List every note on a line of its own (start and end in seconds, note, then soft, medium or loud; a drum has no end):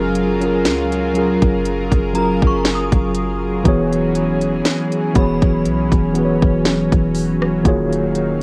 0.00 0.67 F#1 loud
0.00 0.14 F#3 loud
0.00 3.61 F#3 medium
0.00 0.14 C#4 loud
0.00 0.15 F4 loud
0.00 3.61 F4 medium
0.00 0.15 G#4 loud
0.00 8.43 G#4 medium
0.00 0.16 A#4 loud
0.00 3.61 A#4 medium
0.00 0.11 G#5 medium
0.00 3.09 F6 medium
0.15 closed hi-hat medium
0.40 0.90 F#3 medium
0.40 0.91 C#4 medium
0.40 0.92 F4 medium
0.40 0.92 G#4 medium
0.40 closed hi-hat medium
0.45 0.93 A#4 medium
0.65 1.38 C#2 loud
0.65 snare loud
0.65 closed hi-hat medium
0.92 closed hi-hat soft
1.14 1.81 F#3 medium
1.14 1.82 C#4 medium
1.14 1.82 F4 medium
1.14 1.83 G#4 medium
1.14 closed hi-hat medium
1.18 1.83 A#4 medium
1.42 1.90 F#1 loud
1.42 kick medium
1.42 closed hi-hat soft
1.65 closed hi-hat medium
1.92 2.40 F#1 loud
1.92 kick medium
1.92 closed hi-hat medium
2.13 3.13 F#3 medium
2.13 3.13 C#4 medium
2.13 3.14 F4 medium
2.13 3.14 G#4 medium
2.13 4.11 A#5 medium
2.13 closed hi-hat medium
2.18 3.15 A#4 medium
2.42 2.90 F#1 medium
2.42 kick medium
2.47 4.40 C#6 medium
2.65 snare loud
2.65 closed hi-hat medium
2.75 4.66 D#6 medium
2.92 3.62 F#1 loud
2.92 kick loud
2.92 closed hi-hat medium
3.15 closed hi-hat medium
3.63 4.61 E1 loud
3.63 4.63 E3 loud
3.63 7.61 E3 medium
3.63 8.43 F#3 medium
3.63 4.63 B3 loud
3.63 8.43 C#4 medium
3.63 4.64 F#4 loud
3.63 4.64 G#4 loud
3.63 kick loud
3.63 closed hi-hat medium
3.68 4.65 C#5 loud
3.92 closed hi-hat medium
4.15 closed hi-hat medium
4.41 closed hi-hat medium
4.65 snare loud
4.65 closed hi-hat medium
4.92 closed hi-hat soft
5.14 5.66 E1 loud
5.14 5.81 E3 medium
5.14 5.82 B3 medium
5.14 5.82 F#4 medium
5.14 5.83 G#4 medium
5.14 8.11 B5 medium
5.14 kick loud
5.14 closed hi-hat medium
5.18 5.83 C#5 medium
5.42 kick medium
5.42 closed hi-hat soft
5.65 5.91 B1 loud
5.65 closed hi-hat medium
5.92 6.40 E1 loud
5.92 kick medium
5.92 closed hi-hat medium
6.14 7.13 E3 medium
6.14 7.13 B3 medium
6.14 7.14 F#4 medium
6.14 7.15 G#4 medium
6.14 closed hi-hat medium
6.18 6.24 B4 medium
6.25 7.18 C#5 medium
6.42 6.90 E1 medium
6.42 kick medium
6.65 snare loud
6.65 closed hi-hat medium
6.92 7.62 E1 medium
6.92 kick loud
6.92 closed hi-hat medium
7.15 open hi-hat medium
7.42 cross-stick loud
7.63 8.43 D#1 loud
7.63 8.13 D#3 loud
7.63 8.43 D#3 medium
7.63 8.14 A#3 loud
7.63 8.14 F4 loud
7.63 8.15 F#4 loud
7.63 8.15 G#4 loud
7.63 8.43 F5 medium
7.63 kick loud
7.63 closed hi-hat medium
7.68 8.16 C#5 loud
7.93 closed hi-hat medium
8.15 closed hi-hat medium